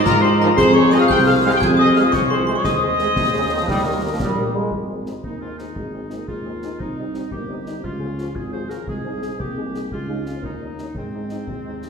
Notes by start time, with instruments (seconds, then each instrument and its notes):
Already playing: woodwind section F4 D#5
0.04 tuba G#2, euphonium F4, trumpet section A#4, piccolo A#5, glockenspiel A#5, concert bass drum, snare
0.21 french horn section F3 C4 D#4, woodwind section G4, trumpet section C5, piccolo C6, glockenspiel C6
0.39 trombone section D#3 F3, french horn section F3 C4 D#4, trumpet section A#4, piccolo A#5, glockenspiel A#5
0.56 tuba F2, woodwind section G#4 C5, euphonium G#4, trumpet section C5, piccolo C6, glockenspiel C6, concert bass drum, snare, crash
0.73 french horn section G#3 C4 G#4, trumpet section C#5, glockenspiel C#6, piccolo C#6
0.91 trombone section C3 G#3, french horn section G#3 C4 G#4, trumpet section D#5, glockenspiel D#6, piccolo D#6, snare
0.99 trumpet section F5, glockenspiel F6, piccolo F6
1.08 tuba C2, euphonium G4, trumpet section G5, glockenspiel G6, piccolo G6, concert bass drum, snare
1.25 french horn section G#3 C4 G#4, trumpet section F5, glockenspiel F6, piccolo F6
1.42 trombone section C3 G#3, french horn section G#3 C4 G#4, trumpet section F5, glockenspiel F6, piccolo F6
1.50 glockenspiel G6, piccolo G6
1.55 trumpet section G5
1.60 tuba F2, woodwind section G#4 C5, trumpet section G#5, glockenspiel G#6, piccolo G#6, concert bass drum, snare
1.77 french horn section G#3 C4 G#4, trumpet section D#5, glockenspiel D#6, piccolo D#6
1.94 trombone section C3 G#3, french horn section G#3 C4 G#4, trumpet section F5, glockenspiel F6, piccolo F6, snare
2.02 trumpet section D#5, glockenspiel D#6, piccolo D#6
2.12 tuba C2, euphonium F4, trumpet section C#5, glockenspiel C#6, piccolo C#6, concert bass drum, snare
2.30 french horn section G#3 C4 G#4, trumpet section C5, glockenspiel C6, piccolo C6
2.47 trombone section C3 G#3, french horn section G#3 C4 G#4, trumpet section C5, glockenspiel C6, piccolo C6
2.55 trumpet section C#5, glockenspiel C#6, piccolo C#6
2.63 tuba D#2, euphonium C4, woodwind section G#4 C5, trumpet section D#5, piccolo D#6, glockenspiel D#6, concert bass drum, snare, crash
2.83 french horn section G#3 C4 G#4
2.99 trombone section C3 G#3, french horn section G#3 C4 G#4, snare
3.16 tuba D#2, trombone section C3, concert bass drum, snare
3.34 trombone section C#3, french horn section G#3 C4 G#4
3.51 trombone section D#3, french horn section G#3 C4 G#4
3.60 trombone section F3
3.67 tuba D#2, trombone section G3, woodwind section G4 A#4, concert bass drum, snare
3.84 trombone section D#3, french horn section G3 A#3 A#4
4.01 trombone section D#3, french horn section G3 A#3 A#4
4.11 trombone section F3
4.19 tuba A#1, trombone section G3, concert bass drum, snare
4.37 french horn section G3 A#3 A#4
4.54 french horn section G3 A#3 A#4, trombone section G#3
4.71 tuba G#1, euphonium G#3, concert bass drum
4.88 french horn section G#3 C4 D#4, euphonium C4, trumpet section G#4
5.06 french horn section G#3 C4 D#4, trumpet section G#4, snare
5.23 tuba D#2, euphonium A#3, woodwind section D#4, concert bass drum
5.40 french horn section G#3 C4 D#4, woodwind section F4, trumpet section G#4
5.57 french horn section G#3 C4 D#4, woodwind section D#4, trumpet section G#4, snare
5.76 tuba G#1, euphonium G#3, concert bass drum
5.92 french horn section G#3 C4 D#4, trumpet section G#4
6.09 french horn section G#3 C4 D#4, euphonium A#3, trumpet section G#4, snare
6.28 tuba D#2, euphonium G#3, woodwind section F4, concert bass drum
6.44 french horn section G#3 C4 D#4, euphonium A#3, trumpet section G#4
6.62 french horn section G#3 C4 D#4, trumpet section G#4, snare
6.80 tuba C2, euphonium C4, woodwind section D#4, concert bass drum
6.97 french horn section G3 C4 D#4, euphonium D#4, trumpet section D#5
7.14 french horn section G3 C4 D#4, trumpet section D#5, snare
7.31 tuba G1, euphonium A#3, woodwind section G4, concert bass drum
7.49 french horn section G3 C4 D#4, euphonium C4, trumpet section D#5
7.66 french horn section G3 C4 D#4, trumpet section D#5, snare
7.83 tuba C#2, euphonium F4, woodwind section F4, concert bass drum
8.00 french horn section F3 F4 G#4, trumpet section C#5
8.18 french horn section F3 F4 G#4, trumpet section C#5, snare
8.35 tuba G#1, woodwind section G#4, concert bass drum
8.52 french horn section F3 F4 G#4, woodwind section C5, trumpet section C#5
8.69 french horn section F3 F4 G#4, woodwind section A#4, trumpet section C#5, snare
8.87 tuba C2, euphonium G#3, woodwind section G#4, concert bass drum
9.04 french horn section G#3 D#4 G#4, euphonium C4, trumpet section D#5
9.22 french horn section G#3 D#4 G#4, trumpet section D#5, snare
9.39 tuba C2, euphonium A#3, woodwind section G4, concert bass drum
9.57 french horn section G#3 D#4 G#4, trumpet section D#5
9.74 french horn section G#3 D#4 G#4, trumpet section D#5, snare
9.91 tuba C#2, euphonium G#3, woodwind section F4, concert bass drum
10.08 french horn section G#3 C#4 G#4, euphonium D#4, trumpet section F5
10.26 french horn section G#3 C#4 G#4, euphonium C#4, trumpet section F5, snare
10.35 euphonium C4
10.42 tuba D#2, euphonium A#3, woodwind section D#4, concert bass drum
10.61 french horn section G3 C#4 D#4, trumpet section D#5
10.76 french horn section G3 C#4 D#4, euphonium A#3, trumpet section D#5, snare
10.95 tuba G#2, euphonium G#3, woodwind section C4, concert bass drum
11.13 french horn section G#3 C4 D#4, trumpet section D#5
11.29 french horn section G#3 C4 D#4, trumpet section D#5, snare
11.47 tuba D#2, concert bass drum
11.65 french horn section G#3 C4 D#4, trumpet section D#5
11.82 french horn section G#3 C4 D#4, trumpet section D#5, snare